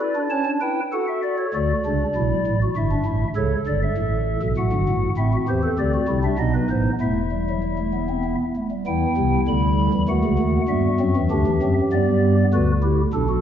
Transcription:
Already playing: D5
0.00 E4 B4
0.16 D4
0.30 C#4 C#5 A5
0.45 D4
0.61 E4 B4 G5
0.93 F#4 A4 F#5
1.07 E5
1.23 D5
1.38 C#5
1.53 D2 D3 F#4 D5
1.85 C#2 C#3 D4
2.16 B1 B2 E4
2.47 A1 A2
2.62 F#4
2.76 G1 G2 E4 E5
2.91 D4
3.05 A1 A2 E4
3.36 C#2 C#3 A4 C#5
3.67 G1 G2 D5
3.83 E5
3.98 A1 A2
4.43 B1 B2
4.57 A1 A2 F#4 F#5
4.72 G1 G2
4.89 A1 A2
5.17 A1 A2 C4 E4 E5
5.33 F#4
5.48 E2 E3 G4 C5
5.63 A4
5.79 D2 D3 G4 D5
5.94 F#4
6.08 C2 C3 E4
6.24 D4 E5
6.39 B1 B2 B3 D#4 D#5
6.54 B4
6.70 A1 A2 C5
7.01 E1 E2 A3 E4 E5
7.32 G3
7.49 F#3
7.63 G3
7.78 A3
7.94 B3
8.09 C4
8.24 B3
8.56 A3
8.71 G3
8.87 E2 E3 B3 E4 G5
9.17 C2 C3
9.48 D2 D3 G3 B5
9.93 E2 E3
10.08 D#2 D#3 A3 F#4 F#5
10.24 C#2 C#3
10.38 D#2 D#3
10.68 G2 G3 B3 E5
11.00 F#2 F#3 C4
11.16 E2 E3
11.31 D2 D3 D4 G4
11.47 E2 E3
11.62 F#2 F#3 C4
11.92 G2 G3 B3 D5
12.53 D2 D3 F#4 B4
12.82 E4 G4
13.13 B1 B2 D4 A4
13.29 F#4

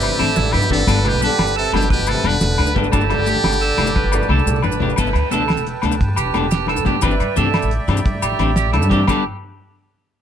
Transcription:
Already playing: C3 G4 B4 D5 E5 G5
0.01 closed hi-hat, low conga, low agogo, maracas
0.11 high conga, low conga, maracas
0.18 A1 E3 C4 D4 G4 A4, closed hi-hat, low agogo
0.36 A1 E4, snare, closed hi-hat, low conga, maracas
0.40 G2
0.45 low conga
0.52 G2 G4 B4, closed hi-hat, high conga, low conga, low agogo
0.56 B2
0.62 low conga, maracas
0.70 G1 D3 E3 C4 D4 G4 A4, kick, closed hi-hat, low conga
0.80 maracas
0.86 G1 G3 B3 D4 A4 B4 G5 A5, kick, closed hi-hat, high conga, low agogo, maracas
0.96 low conga
1.05 B2 G4, closed hi-hat, low conga, low agogo
1.13 B1, low conga
1.21 D3 G3 B3 D4 G4 A4 B4, closed hi-hat, low conga, maracas
1.30 maracas
1.39 G1, snare, low conga, low agogo
1.47 maracas
1.56 C3 A4, closed hi-hat
1.65 maracas
1.73 G1 B2 G3 B3 D4 G4, closed hi-hat, high conga, low conga, low agogo
1.82 maracas
1.90 B2 G4 B4, kick, closed hi-hat, low conga, maracas
1.99 G1
2.06 A4, closed hi-hat, low conga, low agogo, maracas
2.11 C3
2.15 high conga, low conga, maracas
2.24 E1 D3 G3 B3 D4 A4 B4, closed hi-hat, low agogo
2.41 E1, snare, closed hi-hat, low conga, maracas
2.51 low conga
2.58 D2 B4, closed hi-hat, high conga, low conga, low agogo
2.66 low conga, maracas
2.75 G1 G3 B3 D4 A4, kick, closed hi-hat, low conga
2.84 maracas
2.90 G1 D3 A3 D4 G4 A4 D5 A5, kick, closed hi-hat, high conga, low agogo, maracas
3.01 maracas
3.10 closed hi-hat, low conga, low agogo
3.18 G1
3.26 A3 G4, closed hi-hat, maracas
3.36 high conga, low conga
3.44 G1, snare, closed hi-hat, low conga, low agogo, maracas
3.53 low conga, maracas
3.61 A4, closed hi-hat, low conga, maracas
3.77 G1 A3 D4 G4, closed hi-hat, high conga, low conga, low agogo, maracas
3.87 maracas
3.96 B4, kick, snare
4.04 G1, low conga
4.12 low conga, low agogo, maracas
4.22 high conga, maracas
4.29 C2 A3 D4 G4 A4, high tom, low conga, low agogo
4.39 low conga, maracas
4.46 C2, mid tom, low conga, maracas
4.56 low conga, maracas
4.62 A1 B4, mid tom, high conga, low agogo, maracas
4.72 low conga, maracas
4.80 G1 A3 D4 G4, floor tom, low conga
4.89 maracas
4.96 G1 B3 A4 B4 G5 A5, muted clean electric guitar stroke, kick, crash, high conga, low conga, low agogo, maracas
5.07 low conga, maracas
5.13 D2, closed hi-hat, low conga, low agogo, maracas
5.31 D2 B3 D4 A4, closed hi-hat, low conga, maracas
5.40 high conga
5.48 snare, closed hi-hat, low agogo, maracas
5.57 E1, low conga, maracas
5.67 closed hi-hat
5.82 D2 B3 D4 A4, closed hi-hat, high conga, low conga, low agogo, maracas
5.92 maracas
6.00 G2, kick, closed hi-hat, low conga
6.08 low conga
6.16 E1 G4, closed hi-hat, low agogo, maracas
6.25 high conga, low conga
6.34 E1 B3 D4 A4, closed hi-hat, low conga, low agogo, maracas
6.43 low conga
6.51 G4, snare, closed hi-hat, maracas
6.59 low conga
6.67 A4, closed hi-hat, high conga, low agogo
6.77 G2, maracas
6.85 B3 D4 G4, kick, closed hi-hat, low conga, maracas
6.94 low conga
7.02 G1 E3 C4 D4 G4 B4 D5 E5 G5, kick, closed hi-hat, high conga, low conga, low agogo, maracas
7.11 maracas
7.20 G2, closed hi-hat, low conga, low agogo, maracas
7.36 G2 E3 C4 D4 G4 A4, closed hi-hat, low conga, maracas
7.46 high conga
7.53 snare, closed hi-hat, low agogo, maracas
7.62 A1, low conga, maracas
7.71 closed hi-hat
7.88 G2 E3 C4 D4 G4, snare, closed hi-hat, high conga, low conga, low agogo, maracas
7.97 maracas
8.05 G2, kick, closed hi-hat, low conga
8.15 low conga
8.22 A1 G4, closed hi-hat, low agogo, maracas
8.32 high conga, low conga
8.39 A1 E3 C4 D4 G4, closed hi-hat, low agogo
8.49 low conga
8.56 G4, snare, closed hi-hat, maracas
8.65 low conga
8.73 A4, closed hi-hat, high conga, low agogo
8.82 G2, maracas
8.90 E3 C4 D4 G4, kick, closed hi-hat, low conga, maracas
9.00 low conga
9.07 G1 G3 B3 D4 G4 A4 B4 G5, kick, snare, splash, high conga, low agogo, maracas

